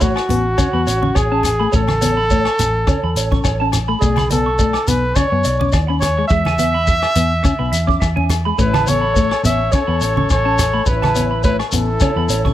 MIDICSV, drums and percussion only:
0, 0, Header, 1, 3, 480
1, 0, Start_track
1, 0, Key_signature, 3, "major"
1, 0, Tempo, 571429
1, 1456, Time_signature, 4, 2, 24, 8
1, 10530, End_track
2, 0, Start_track
2, 0, Title_t, "Shekere"
2, 6, Note_on_c, 9, 82, 91
2, 90, Note_off_c, 9, 82, 0
2, 492, Note_on_c, 9, 82, 93
2, 576, Note_off_c, 9, 82, 0
2, 735, Note_on_c, 9, 82, 68
2, 819, Note_off_c, 9, 82, 0
2, 978, Note_on_c, 9, 82, 78
2, 1062, Note_off_c, 9, 82, 0
2, 1213, Note_on_c, 9, 82, 65
2, 1297, Note_off_c, 9, 82, 0
2, 1451, Note_on_c, 9, 82, 80
2, 1535, Note_off_c, 9, 82, 0
2, 1695, Note_on_c, 9, 82, 67
2, 1779, Note_off_c, 9, 82, 0
2, 1935, Note_on_c, 9, 82, 77
2, 2019, Note_off_c, 9, 82, 0
2, 2176, Note_on_c, 9, 82, 65
2, 2260, Note_off_c, 9, 82, 0
2, 2419, Note_on_c, 9, 82, 87
2, 2503, Note_off_c, 9, 82, 0
2, 2661, Note_on_c, 9, 82, 68
2, 2745, Note_off_c, 9, 82, 0
2, 2896, Note_on_c, 9, 82, 81
2, 2980, Note_off_c, 9, 82, 0
2, 3136, Note_on_c, 9, 82, 61
2, 3220, Note_off_c, 9, 82, 0
2, 3376, Note_on_c, 9, 82, 80
2, 3460, Note_off_c, 9, 82, 0
2, 3618, Note_on_c, 9, 82, 61
2, 3702, Note_off_c, 9, 82, 0
2, 3856, Note_on_c, 9, 82, 80
2, 3940, Note_off_c, 9, 82, 0
2, 4095, Note_on_c, 9, 82, 61
2, 4179, Note_off_c, 9, 82, 0
2, 4336, Note_on_c, 9, 82, 85
2, 4420, Note_off_c, 9, 82, 0
2, 4570, Note_on_c, 9, 82, 67
2, 4654, Note_off_c, 9, 82, 0
2, 4808, Note_on_c, 9, 82, 77
2, 4892, Note_off_c, 9, 82, 0
2, 5054, Note_on_c, 9, 82, 62
2, 5138, Note_off_c, 9, 82, 0
2, 5290, Note_on_c, 9, 82, 76
2, 5374, Note_off_c, 9, 82, 0
2, 5533, Note_on_c, 9, 82, 63
2, 5617, Note_off_c, 9, 82, 0
2, 5772, Note_on_c, 9, 82, 84
2, 5856, Note_off_c, 9, 82, 0
2, 6013, Note_on_c, 9, 82, 61
2, 6097, Note_off_c, 9, 82, 0
2, 6259, Note_on_c, 9, 82, 82
2, 6343, Note_off_c, 9, 82, 0
2, 6500, Note_on_c, 9, 82, 62
2, 6584, Note_off_c, 9, 82, 0
2, 6736, Note_on_c, 9, 82, 75
2, 6820, Note_off_c, 9, 82, 0
2, 6974, Note_on_c, 9, 82, 60
2, 7058, Note_off_c, 9, 82, 0
2, 7213, Note_on_c, 9, 82, 81
2, 7297, Note_off_c, 9, 82, 0
2, 7452, Note_on_c, 9, 82, 66
2, 7536, Note_off_c, 9, 82, 0
2, 7694, Note_on_c, 9, 82, 85
2, 7778, Note_off_c, 9, 82, 0
2, 7935, Note_on_c, 9, 82, 68
2, 8019, Note_off_c, 9, 82, 0
2, 8168, Note_on_c, 9, 82, 89
2, 8252, Note_off_c, 9, 82, 0
2, 8407, Note_on_c, 9, 82, 70
2, 8491, Note_off_c, 9, 82, 0
2, 8649, Note_on_c, 9, 82, 80
2, 8733, Note_off_c, 9, 82, 0
2, 8891, Note_on_c, 9, 82, 66
2, 8975, Note_off_c, 9, 82, 0
2, 9123, Note_on_c, 9, 82, 89
2, 9207, Note_off_c, 9, 82, 0
2, 9368, Note_on_c, 9, 82, 66
2, 9452, Note_off_c, 9, 82, 0
2, 9606, Note_on_c, 9, 82, 88
2, 9690, Note_off_c, 9, 82, 0
2, 9843, Note_on_c, 9, 82, 70
2, 9927, Note_off_c, 9, 82, 0
2, 10083, Note_on_c, 9, 82, 92
2, 10167, Note_off_c, 9, 82, 0
2, 10323, Note_on_c, 9, 82, 71
2, 10407, Note_off_c, 9, 82, 0
2, 10530, End_track
3, 0, Start_track
3, 0, Title_t, "Drums"
3, 12, Note_on_c, 9, 36, 63
3, 96, Note_off_c, 9, 36, 0
3, 132, Note_on_c, 9, 68, 63
3, 143, Note_on_c, 9, 37, 61
3, 216, Note_off_c, 9, 68, 0
3, 227, Note_off_c, 9, 37, 0
3, 245, Note_on_c, 9, 64, 65
3, 253, Note_on_c, 9, 42, 45
3, 329, Note_off_c, 9, 64, 0
3, 337, Note_off_c, 9, 42, 0
3, 485, Note_on_c, 9, 68, 57
3, 488, Note_on_c, 9, 37, 62
3, 490, Note_on_c, 9, 63, 63
3, 493, Note_on_c, 9, 36, 76
3, 569, Note_off_c, 9, 68, 0
3, 572, Note_off_c, 9, 37, 0
3, 574, Note_off_c, 9, 63, 0
3, 577, Note_off_c, 9, 36, 0
3, 738, Note_on_c, 9, 42, 46
3, 822, Note_off_c, 9, 42, 0
3, 863, Note_on_c, 9, 63, 67
3, 947, Note_off_c, 9, 63, 0
3, 969, Note_on_c, 9, 68, 64
3, 973, Note_on_c, 9, 37, 62
3, 975, Note_on_c, 9, 36, 59
3, 1053, Note_off_c, 9, 68, 0
3, 1057, Note_off_c, 9, 37, 0
3, 1059, Note_off_c, 9, 36, 0
3, 1202, Note_on_c, 9, 68, 56
3, 1204, Note_on_c, 9, 64, 66
3, 1216, Note_on_c, 9, 37, 62
3, 1216, Note_on_c, 9, 42, 49
3, 1286, Note_off_c, 9, 68, 0
3, 1288, Note_off_c, 9, 64, 0
3, 1300, Note_off_c, 9, 37, 0
3, 1300, Note_off_c, 9, 42, 0
3, 1457, Note_on_c, 9, 36, 80
3, 1541, Note_off_c, 9, 36, 0
3, 1575, Note_on_c, 9, 68, 60
3, 1582, Note_on_c, 9, 37, 66
3, 1583, Note_on_c, 9, 63, 62
3, 1659, Note_off_c, 9, 68, 0
3, 1666, Note_off_c, 9, 37, 0
3, 1667, Note_off_c, 9, 63, 0
3, 1696, Note_on_c, 9, 42, 50
3, 1703, Note_on_c, 9, 63, 58
3, 1780, Note_off_c, 9, 42, 0
3, 1787, Note_off_c, 9, 63, 0
3, 1937, Note_on_c, 9, 36, 61
3, 2021, Note_off_c, 9, 36, 0
3, 2059, Note_on_c, 9, 68, 63
3, 2060, Note_on_c, 9, 37, 59
3, 2143, Note_off_c, 9, 68, 0
3, 2144, Note_off_c, 9, 37, 0
3, 2175, Note_on_c, 9, 42, 50
3, 2184, Note_on_c, 9, 64, 62
3, 2259, Note_off_c, 9, 42, 0
3, 2268, Note_off_c, 9, 64, 0
3, 2410, Note_on_c, 9, 68, 57
3, 2411, Note_on_c, 9, 37, 62
3, 2416, Note_on_c, 9, 36, 77
3, 2419, Note_on_c, 9, 63, 59
3, 2494, Note_off_c, 9, 68, 0
3, 2495, Note_off_c, 9, 37, 0
3, 2500, Note_off_c, 9, 36, 0
3, 2503, Note_off_c, 9, 63, 0
3, 2656, Note_on_c, 9, 42, 46
3, 2740, Note_off_c, 9, 42, 0
3, 2787, Note_on_c, 9, 36, 61
3, 2790, Note_on_c, 9, 63, 68
3, 2871, Note_off_c, 9, 36, 0
3, 2874, Note_off_c, 9, 63, 0
3, 2888, Note_on_c, 9, 68, 63
3, 2896, Note_on_c, 9, 37, 63
3, 2898, Note_on_c, 9, 36, 58
3, 2972, Note_off_c, 9, 68, 0
3, 2980, Note_off_c, 9, 37, 0
3, 2982, Note_off_c, 9, 36, 0
3, 3126, Note_on_c, 9, 68, 59
3, 3132, Note_on_c, 9, 37, 58
3, 3132, Note_on_c, 9, 42, 44
3, 3139, Note_on_c, 9, 64, 65
3, 3210, Note_off_c, 9, 68, 0
3, 3216, Note_off_c, 9, 37, 0
3, 3216, Note_off_c, 9, 42, 0
3, 3223, Note_off_c, 9, 64, 0
3, 3378, Note_on_c, 9, 36, 84
3, 3462, Note_off_c, 9, 36, 0
3, 3493, Note_on_c, 9, 68, 65
3, 3501, Note_on_c, 9, 63, 69
3, 3508, Note_on_c, 9, 37, 67
3, 3577, Note_off_c, 9, 68, 0
3, 3585, Note_off_c, 9, 63, 0
3, 3592, Note_off_c, 9, 37, 0
3, 3616, Note_on_c, 9, 42, 45
3, 3619, Note_on_c, 9, 63, 62
3, 3700, Note_off_c, 9, 42, 0
3, 3703, Note_off_c, 9, 63, 0
3, 3858, Note_on_c, 9, 36, 67
3, 3942, Note_off_c, 9, 36, 0
3, 3975, Note_on_c, 9, 68, 60
3, 3980, Note_on_c, 9, 37, 58
3, 4059, Note_off_c, 9, 68, 0
3, 4064, Note_off_c, 9, 37, 0
3, 4097, Note_on_c, 9, 42, 43
3, 4097, Note_on_c, 9, 64, 69
3, 4181, Note_off_c, 9, 42, 0
3, 4181, Note_off_c, 9, 64, 0
3, 4333, Note_on_c, 9, 68, 60
3, 4335, Note_on_c, 9, 37, 62
3, 4338, Note_on_c, 9, 36, 83
3, 4338, Note_on_c, 9, 63, 67
3, 4417, Note_off_c, 9, 68, 0
3, 4419, Note_off_c, 9, 37, 0
3, 4422, Note_off_c, 9, 36, 0
3, 4422, Note_off_c, 9, 63, 0
3, 4576, Note_on_c, 9, 42, 43
3, 4660, Note_off_c, 9, 42, 0
3, 4710, Note_on_c, 9, 63, 66
3, 4794, Note_off_c, 9, 63, 0
3, 4815, Note_on_c, 9, 37, 65
3, 4818, Note_on_c, 9, 36, 58
3, 4819, Note_on_c, 9, 68, 64
3, 4899, Note_off_c, 9, 37, 0
3, 4902, Note_off_c, 9, 36, 0
3, 4903, Note_off_c, 9, 68, 0
3, 5057, Note_on_c, 9, 68, 58
3, 5060, Note_on_c, 9, 64, 70
3, 5062, Note_on_c, 9, 37, 63
3, 5062, Note_on_c, 9, 42, 46
3, 5141, Note_off_c, 9, 68, 0
3, 5144, Note_off_c, 9, 64, 0
3, 5146, Note_off_c, 9, 37, 0
3, 5146, Note_off_c, 9, 42, 0
3, 5298, Note_on_c, 9, 36, 82
3, 5382, Note_off_c, 9, 36, 0
3, 5420, Note_on_c, 9, 63, 66
3, 5429, Note_on_c, 9, 68, 60
3, 5430, Note_on_c, 9, 37, 66
3, 5504, Note_off_c, 9, 63, 0
3, 5513, Note_off_c, 9, 68, 0
3, 5514, Note_off_c, 9, 37, 0
3, 5530, Note_on_c, 9, 63, 64
3, 5538, Note_on_c, 9, 42, 48
3, 5614, Note_off_c, 9, 63, 0
3, 5622, Note_off_c, 9, 42, 0
3, 5777, Note_on_c, 9, 36, 64
3, 5861, Note_off_c, 9, 36, 0
3, 5899, Note_on_c, 9, 37, 56
3, 5904, Note_on_c, 9, 68, 57
3, 5983, Note_off_c, 9, 37, 0
3, 5988, Note_off_c, 9, 68, 0
3, 6008, Note_on_c, 9, 42, 47
3, 6013, Note_on_c, 9, 64, 67
3, 6092, Note_off_c, 9, 42, 0
3, 6097, Note_off_c, 9, 64, 0
3, 6245, Note_on_c, 9, 37, 62
3, 6254, Note_on_c, 9, 36, 82
3, 6258, Note_on_c, 9, 68, 59
3, 6259, Note_on_c, 9, 63, 59
3, 6329, Note_off_c, 9, 37, 0
3, 6338, Note_off_c, 9, 36, 0
3, 6342, Note_off_c, 9, 68, 0
3, 6343, Note_off_c, 9, 63, 0
3, 6488, Note_on_c, 9, 42, 46
3, 6572, Note_off_c, 9, 42, 0
3, 6624, Note_on_c, 9, 36, 62
3, 6708, Note_off_c, 9, 36, 0
3, 6734, Note_on_c, 9, 68, 60
3, 6735, Note_on_c, 9, 37, 61
3, 6736, Note_on_c, 9, 36, 62
3, 6818, Note_off_c, 9, 68, 0
3, 6819, Note_off_c, 9, 37, 0
3, 6820, Note_off_c, 9, 36, 0
3, 6863, Note_on_c, 9, 63, 55
3, 6947, Note_off_c, 9, 63, 0
3, 6968, Note_on_c, 9, 64, 63
3, 6971, Note_on_c, 9, 37, 65
3, 6971, Note_on_c, 9, 42, 44
3, 6977, Note_on_c, 9, 68, 56
3, 7052, Note_off_c, 9, 64, 0
3, 7055, Note_off_c, 9, 37, 0
3, 7055, Note_off_c, 9, 42, 0
3, 7061, Note_off_c, 9, 68, 0
3, 7215, Note_on_c, 9, 36, 81
3, 7299, Note_off_c, 9, 36, 0
3, 7341, Note_on_c, 9, 68, 62
3, 7342, Note_on_c, 9, 37, 66
3, 7342, Note_on_c, 9, 63, 69
3, 7425, Note_off_c, 9, 68, 0
3, 7426, Note_off_c, 9, 37, 0
3, 7426, Note_off_c, 9, 63, 0
3, 7458, Note_on_c, 9, 42, 43
3, 7461, Note_on_c, 9, 63, 60
3, 7542, Note_off_c, 9, 42, 0
3, 7545, Note_off_c, 9, 63, 0
3, 7696, Note_on_c, 9, 36, 67
3, 7780, Note_off_c, 9, 36, 0
3, 7822, Note_on_c, 9, 37, 60
3, 7830, Note_on_c, 9, 68, 64
3, 7906, Note_off_c, 9, 37, 0
3, 7914, Note_off_c, 9, 68, 0
3, 7938, Note_on_c, 9, 64, 71
3, 7939, Note_on_c, 9, 42, 42
3, 8022, Note_off_c, 9, 64, 0
3, 8023, Note_off_c, 9, 42, 0
3, 8177, Note_on_c, 9, 36, 83
3, 8177, Note_on_c, 9, 37, 64
3, 8182, Note_on_c, 9, 63, 63
3, 8189, Note_on_c, 9, 68, 63
3, 8261, Note_off_c, 9, 36, 0
3, 8261, Note_off_c, 9, 37, 0
3, 8266, Note_off_c, 9, 63, 0
3, 8273, Note_off_c, 9, 68, 0
3, 8419, Note_on_c, 9, 42, 42
3, 8503, Note_off_c, 9, 42, 0
3, 8545, Note_on_c, 9, 63, 71
3, 8629, Note_off_c, 9, 63, 0
3, 8655, Note_on_c, 9, 36, 61
3, 8656, Note_on_c, 9, 37, 62
3, 8656, Note_on_c, 9, 68, 65
3, 8739, Note_off_c, 9, 36, 0
3, 8740, Note_off_c, 9, 37, 0
3, 8740, Note_off_c, 9, 68, 0
3, 8895, Note_on_c, 9, 68, 57
3, 8896, Note_on_c, 9, 37, 62
3, 8896, Note_on_c, 9, 42, 47
3, 8896, Note_on_c, 9, 64, 74
3, 8979, Note_off_c, 9, 68, 0
3, 8980, Note_off_c, 9, 37, 0
3, 8980, Note_off_c, 9, 42, 0
3, 8980, Note_off_c, 9, 64, 0
3, 9135, Note_on_c, 9, 36, 81
3, 9219, Note_off_c, 9, 36, 0
3, 9259, Note_on_c, 9, 68, 61
3, 9267, Note_on_c, 9, 63, 77
3, 9269, Note_on_c, 9, 37, 67
3, 9343, Note_off_c, 9, 68, 0
3, 9351, Note_off_c, 9, 63, 0
3, 9353, Note_off_c, 9, 37, 0
3, 9377, Note_on_c, 9, 42, 49
3, 9383, Note_on_c, 9, 63, 67
3, 9461, Note_off_c, 9, 42, 0
3, 9467, Note_off_c, 9, 63, 0
3, 9612, Note_on_c, 9, 36, 66
3, 9696, Note_off_c, 9, 36, 0
3, 9740, Note_on_c, 9, 68, 62
3, 9741, Note_on_c, 9, 37, 58
3, 9824, Note_off_c, 9, 68, 0
3, 9825, Note_off_c, 9, 37, 0
3, 9853, Note_on_c, 9, 42, 47
3, 9857, Note_on_c, 9, 64, 68
3, 9937, Note_off_c, 9, 42, 0
3, 9941, Note_off_c, 9, 64, 0
3, 10085, Note_on_c, 9, 68, 62
3, 10090, Note_on_c, 9, 36, 85
3, 10090, Note_on_c, 9, 37, 61
3, 10098, Note_on_c, 9, 63, 64
3, 10169, Note_off_c, 9, 68, 0
3, 10174, Note_off_c, 9, 36, 0
3, 10174, Note_off_c, 9, 37, 0
3, 10182, Note_off_c, 9, 63, 0
3, 10335, Note_on_c, 9, 42, 48
3, 10419, Note_off_c, 9, 42, 0
3, 10459, Note_on_c, 9, 36, 60
3, 10466, Note_on_c, 9, 63, 67
3, 10530, Note_off_c, 9, 36, 0
3, 10530, Note_off_c, 9, 63, 0
3, 10530, End_track
0, 0, End_of_file